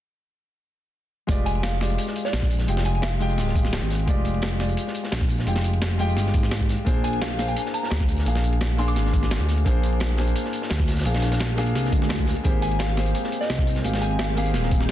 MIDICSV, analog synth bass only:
0, 0, Header, 1, 2, 480
1, 0, Start_track
1, 0, Tempo, 348837
1, 1770, Time_signature, 4, 2, 24, 8
1, 20524, End_track
2, 0, Start_track
2, 0, Title_t, "Analog synth bass"
2, 0, Program_c, 0, 38
2, 1771, Note_on_c, 0, 29, 97
2, 2712, Note_off_c, 0, 29, 0
2, 3210, Note_on_c, 0, 34, 96
2, 3671, Note_off_c, 0, 34, 0
2, 3691, Note_on_c, 0, 29, 99
2, 4649, Note_on_c, 0, 26, 82
2, 4669, Note_off_c, 0, 29, 0
2, 5233, Note_off_c, 0, 26, 0
2, 5254, Note_on_c, 0, 32, 100
2, 5591, Note_off_c, 0, 32, 0
2, 5609, Note_on_c, 0, 29, 101
2, 6550, Note_off_c, 0, 29, 0
2, 7046, Note_on_c, 0, 34, 98
2, 7509, Note_off_c, 0, 34, 0
2, 7524, Note_on_c, 0, 29, 99
2, 8468, Note_off_c, 0, 29, 0
2, 8482, Note_on_c, 0, 31, 87
2, 8702, Note_off_c, 0, 31, 0
2, 8727, Note_on_c, 0, 32, 91
2, 9312, Note_off_c, 0, 32, 0
2, 9447, Note_on_c, 0, 34, 97
2, 10389, Note_off_c, 0, 34, 0
2, 10887, Note_on_c, 0, 38, 99
2, 11349, Note_off_c, 0, 38, 0
2, 11366, Note_on_c, 0, 34, 100
2, 12329, Note_on_c, 0, 32, 83
2, 12349, Note_off_c, 0, 34, 0
2, 12913, Note_off_c, 0, 32, 0
2, 12933, Note_on_c, 0, 38, 102
2, 13270, Note_off_c, 0, 38, 0
2, 13288, Note_on_c, 0, 34, 100
2, 14230, Note_off_c, 0, 34, 0
2, 14730, Note_on_c, 0, 38, 96
2, 15191, Note_off_c, 0, 38, 0
2, 15203, Note_on_c, 0, 34, 99
2, 16147, Note_off_c, 0, 34, 0
2, 16166, Note_on_c, 0, 36, 86
2, 16384, Note_off_c, 0, 36, 0
2, 16409, Note_on_c, 0, 38, 91
2, 16993, Note_off_c, 0, 38, 0
2, 17131, Note_on_c, 0, 32, 99
2, 18071, Note_off_c, 0, 32, 0
2, 18568, Note_on_c, 0, 36, 98
2, 19030, Note_off_c, 0, 36, 0
2, 19047, Note_on_c, 0, 32, 99
2, 20012, Note_on_c, 0, 27, 84
2, 20033, Note_off_c, 0, 32, 0
2, 20524, Note_off_c, 0, 27, 0
2, 20524, End_track
0, 0, End_of_file